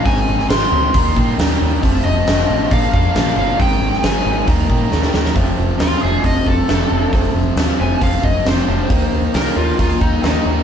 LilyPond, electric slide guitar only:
\new Staff \with { instrumentName = "Electric slide guitar" } { \time 4/4 \key ees \lydian \tempo 4 = 136 aes''4 c'''2 r4 | r8 ees''4. f''8 f''4 f''8 | g''4 aes''4 r2 | r4 f'8 aes'8 ees''8 a'4.~ |
a'8 r4 aes''8 f''8 ees''8 c''4~ | c''4 bes'8 f'8 f'8 ees'8 ees'8 r8 | }